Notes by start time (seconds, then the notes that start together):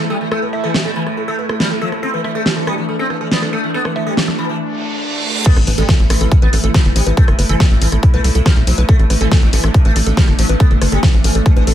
Already playing: A3 E4
0.10 G3 A4
0.21 E3
0.32 A3 A4, cross-stick
0.42 A2 B4
0.53 A2 E5
0.64 E3 A4
0.74 A2 G4, cross-stick, snare
0.85 A2 A4
0.96 E3 B5
1.07 A2, cross-stick
1.17 A2 A4
1.28 A3 A4
1.39 A2 B4
1.49 A2 A4, cross-stick
1.60 G3, snare
1.71 A2 A4
1.82 F3 A4
1.92 A2, cross-stick
2.03 C4 D4 A4
2.14 E3 B4
2.24 E3 E5, cross-stick
2.35 A3 A4
2.46 E3 G4, snare
2.57 E3 A4
2.67 G3 B5, cross-stick
2.78 E3
2.89 E3 A4
2.99 C4 A4
3.10 E3 B4, cross-stick
3.21 E3 A4
3.32 B3, snare
3.42 E3 A4, cross-stick
3.53 A3 A4
3.64 E3
3.74 B3 A4
3.85 E3 B4, cross-stick
3.96 E3 E5
4.07 G3 A4
4.17 E3 G4, snare
4.28 E3 A4, cross-stick, snare
4.39 E3 B5
4.49 E3
4.60 reverse cymbal
5.46 A3 B3 E4 A4, kick, closed hi-hat, crash, impact
5.57 A1 E3 A4, cross-stick, closed hi-hat
5.67 A1 E3 B4, open hi-hat
5.78 A1 G3 A4, closed hi-hat
5.89 E3 A4, kick, snare, closed hi-hat
5.99 A1 E3, closed hi-hat
6.10 A1 E3 A4, cross-stick, open hi-hat
6.21 A1 E3 A4, closed hi-hat
6.32 E3, kick, closed hi-hat
6.42 A1 B3 B4, closed hi-hat
6.53 A1 E3 A4, open hi-hat
6.64 A1 E3 A4, closed hi-hat
6.74 A3, kick, cross-stick, snare, closed hi-hat
6.85 G1 E3, closed hi-hat
6.96 A1 G3 C5, open hi-hat
7.07 A1 E3 B4, closed hi-hat
7.17 A3 A4, kick, closed hi-hat
7.28 G1 A2 A4, cross-stick, closed hi-hat
7.39 G1 A2 B4, open hi-hat
7.49 G1 E3 A4, closed hi-hat
7.60 A2 A4, kick, snare, closed hi-hat
7.71 A1 A2, closed hi-hat
7.82 A1 E3 A4, open hi-hat
7.92 A1 A2 A4, cross-stick, closed hi-hat
8.03 kick, closed hi-hat
8.14 C2 A3 B4, closed hi-hat
8.24 C2 A2 A4, open hi-hat
8.35 C2 A2 A4, closed hi-hat
8.46 G3, kick, cross-stick, snare, closed hi-hat
8.57 B1 A2, closed hi-hat
8.67 B1 F3 C5, open hi-hat
8.78 B1 A2 B4, closed hi-hat
8.89 A3 D4 A4, kick, closed hi-hat
8.99 A1 A2 A4, closed hi-hat
9.10 A1 A2 B4, cross-stick, open hi-hat
9.21 A1 E3 A4, closed hi-hat
9.32 A4, kick, snare, closed hi-hat
9.42 A1 A2, closed hi-hat
9.53 A1 E3 A4, open hi-hat
9.64 A1 A2 A4, cross-stick, closed hi-hat
9.74 A2, kick, closed hi-hat
9.85 A1 A3 B4, closed hi-hat
9.96 A1 A2 A4, open hi-hat
10.06 A1 A2 A4, closed hi-hat
10.17 G3, kick, snare, closed hi-hat
10.28 G1 A2, cross-stick, closed hi-hat
10.39 A1 F3 C5, open hi-hat
10.49 A1 A2 B4, closed hi-hat
10.60 B3 A4, kick, closed hi-hat
10.71 G1 E3 A4, closed hi-hat
10.82 G1 E3 B4, cross-stick, open hi-hat
10.92 G1 G3 A4, closed hi-hat
11.03 A4, kick, snare, closed hi-hat
11.14 A1 E3, closed hi-hat
11.24 A1 E3 A4, open hi-hat
11.35 A1 E3 A4, closed hi-hat
11.46 E3, kick, cross-stick, closed hi-hat
11.56 A1 E3 B4, closed hi-hat
11.67 A1 E3 A4, open hi-hat